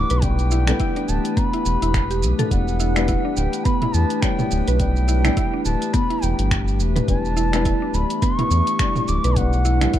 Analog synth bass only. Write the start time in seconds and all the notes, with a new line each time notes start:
0.11 B1
1.09 D1
1.66 E1
1.82 E1
2.23 B1
2.51 E1
3.37 D1
3.94 E2
4.52 D1
4.68 B1
5.66 D1
6.23 E1
6.39 G1
6.80 E1
7.08 E1
7.94 D1
8.51 E2
9.08 D1
9.24 B1